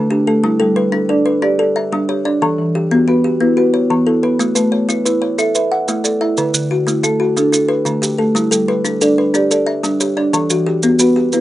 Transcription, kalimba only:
0.00 0.27 D3 medium
0.00 0.11 E4 medium
0.00 0.27 B4 medium
0.10 0.60 G4 medium
0.27 0.58 A4 medium
0.44 0.77 G3 medium
0.60 1.08 A4 medium
0.76 1.24 B4 medium
0.92 1.26 D4 medium
1.09 1.58 A4 medium
1.26 1.75 B4 medium
1.42 1.75 D4 medium
1.59 2.09 A4 medium
1.76 2.25 E5 medium
1.92 2.25 G3 medium
2.09 2.58 C#5 medium
2.25 2.58 D5 medium
2.42 2.75 E3 medium
2.75 3.23 G4 medium
2.91 3.24 B3 medium
3.08 3.56 F#4 medium
3.24 3.74 G4 medium
3.40 3.74 B3 medium
3.57 4.07 F#4 medium
3.74 4.23 C#5 medium
3.90 4.23 E3 medium
4.07 4.56 A4 medium
4.23 4.54 B4 medium
4.39 4.72 A3 medium
4.55 5.04 B4 medium
4.72 5.20 C#5 medium
4.89 5.22 E4 medium
5.05 5.54 B4 medium
5.22 5.71 C#5 medium
5.38 5.71 E4 medium
5.55 6.05 B4 medium
5.72 6.21 F#5 medium
5.88 6.21 A3 medium
6.04 6.54 D5 medium
6.21 6.54 E5 medium
6.38 6.71 D3 medium
6.71 7.19 F#4 medium
6.87 7.20 A3 medium
7.03 7.51 E4 medium
7.20 7.69 F#4 medium
7.37 7.70 A3 medium
7.52 8.02 E4 medium
7.68 8.18 B4 medium
7.85 8.19 D3 medium
8.02 8.52 G4 medium
8.18 8.50 A4 medium
8.35 8.68 G3 medium
8.51 9.00 A4 medium
8.68 9.17 B4 medium
8.85 9.18 D4 medium
9.02 9.50 A4 medium
9.18 9.68 B4 medium
9.34 9.67 D4 medium
9.51 10.00 A4 medium
9.66 10.16 E5 medium
9.83 10.17 G3 medium
10.01 10.50 C#5 medium
10.17 10.50 D5 medium
10.33 10.66 E3 medium
10.50 10.99 F#4 medium
10.66 11.15 G4 medium
10.83 11.16 B3 medium
11.00 11.41 F#4 medium
11.16 11.41 G4 medium
11.33 11.41 B3 medium

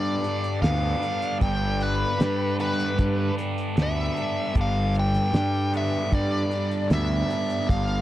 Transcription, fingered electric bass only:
0.00 0.15 G2 medium
0.62 0.94 D2 medium
1.41 2.04 G1 medium
2.20 2.82 G2 medium
2.99 3.30 G2 loud
3.78 4.08 D2 loud
4.56 5.18 G1 medium
5.33 5.96 G2 medium
6.12 6.44 G2 loud
6.90 7.22 D2 loud
7.69 8.01 G1 medium

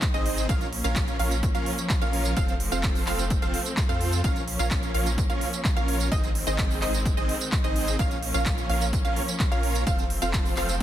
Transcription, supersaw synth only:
0.14 0.46 C4 medium
0.14 0.46 D#4 medium
0.14 0.46 G#4 medium
0.14 0.46 C5 medium
0.14 0.46 D#5 loud
0.49 0.67 C#4 loud
0.49 0.67 F4 medium
0.49 0.67 A#4 medium
0.49 0.67 C#5 medium
0.49 0.67 F5 loud
0.84 1.17 C#4 medium
0.84 1.17 F4 medium
0.84 1.17 A#4 medium
0.84 1.17 C#5 medium
0.84 1.17 F5 medium
1.19 1.37 C#4 medium
1.19 1.37 F4 medium
1.19 1.37 A#4 medium
1.19 1.37 C#5 medium
1.19 1.37 F5 medium
1.55 1.72 C#4 medium
1.55 1.72 F4 medium
1.55 1.72 A#4 medium
1.55 1.72 C#5 medium
1.55 1.72 F5 medium
2.01 2.34 C#4 medium
2.01 2.34 F4 medium
2.01 2.34 A#4 medium
2.01 2.34 C#5 medium
2.01 2.34 F5 loud
2.37 2.54 C4 loud
2.37 2.54 F4 medium
2.37 2.54 A4 medium
2.37 2.54 C5 medium
2.37 2.54 F5 loud
2.72 3.04 C4 medium
2.72 3.04 F4 medium
2.72 3.04 A4 medium
2.72 3.04 C5 medium
2.72 3.04 F5 medium
3.07 3.25 C4 medium
3.07 3.25 F4 medium
3.07 3.25 A4 medium
3.07 3.25 C5 medium
3.07 3.25 F5 medium
3.42 3.60 C4 medium
3.42 3.60 F4 medium
3.42 3.60 A4 medium
3.42 3.60 C5 medium
3.42 3.60 F5 medium
3.89 4.21 C4 medium
3.89 4.21 F4 medium
3.89 4.21 A4 medium
3.89 4.21 C5 medium
3.89 4.21 F5 medium
4.24 4.42 C#4 loud
4.24 4.42 F4 medium
4.24 4.42 A#4 medium
4.24 4.42 C#5 medium
4.24 4.42 F5 loud
4.59 4.92 C#4 medium
4.59 4.92 F4 medium
4.59 4.92 A#4 medium
4.59 4.92 C#5 medium
4.59 4.92 F5 medium
4.94 5.12 C#4 medium
4.94 5.12 F4 medium
4.94 5.12 A#4 medium
4.94 5.12 C#5 medium
4.94 5.12 F5 medium
5.30 5.47 C#4 medium
5.30 5.47 F4 medium
5.30 5.47 A#4 medium
5.30 5.47 C#5 medium
5.30 5.47 F5 medium
5.76 6.09 C#4 medium
5.76 6.09 F4 medium
5.76 6.09 A#4 medium
5.76 6.09 C#5 medium
5.76 6.09 F5 loud
6.12 6.29 C4 loud
6.12 6.29 D#4 medium
6.12 6.29 G#4 medium
6.12 6.29 C5 medium
6.12 6.29 D#5 loud
6.47 6.79 C4 medium
6.47 6.79 D#4 medium
6.47 6.79 G#4 medium
6.47 6.79 C5 medium
6.47 6.79 D#5 medium
6.82 7.00 C4 medium
6.82 7.00 D#4 medium
6.82 7.00 G#4 medium
6.82 7.00 C5 medium
6.82 7.00 D#5 medium
7.17 7.35 C4 medium
7.17 7.35 D#4 medium
7.17 7.35 G#4 medium
7.17 7.35 C5 medium
7.17 7.35 D#5 medium
7.64 7.96 C4 medium
7.64 7.96 D#4 medium
7.64 7.96 G#4 medium
7.64 7.96 C5 medium
7.64 7.96 D#5 loud
7.99 8.17 C#4 loud
7.99 8.17 F4 medium
7.99 8.17 A#4 medium
7.99 8.17 C#5 medium
7.99 8.17 F5 loud
8.34 8.67 C#4 medium
8.34 8.67 F4 medium
8.34 8.67 A#4 medium
8.34 8.67 C#5 medium
8.34 8.67 F5 medium
8.69 8.87 C#4 medium
8.69 8.87 F4 medium
8.69 8.87 A#4 medium
8.69 8.87 C#5 medium
8.69 8.87 F5 medium
9.05 9.22 C#4 medium
9.05 9.22 F4 medium
9.05 9.22 A#4 medium
9.05 9.22 C#5 medium
9.05 9.22 F5 medium
9.52 9.84 C#4 medium
9.52 9.84 F4 medium
9.52 9.84 A#4 medium
9.52 9.84 C#5 medium
9.52 9.84 F5 loud
9.87 10.04 C4 loud
9.87 10.04 F4 medium
9.87 10.04 A4 medium
9.87 10.04 C5 medium
9.87 10.04 F5 loud
10.22 10.54 C4 medium
10.22 10.54 F4 medium
10.22 10.54 A4 medium
10.22 10.54 C5 medium
10.22 10.54 F5 medium
10.57 10.75 C4 medium
10.57 10.75 F4 medium
10.57 10.75 A4 medium
10.57 10.75 C5 medium
10.57 10.75 F5 medium

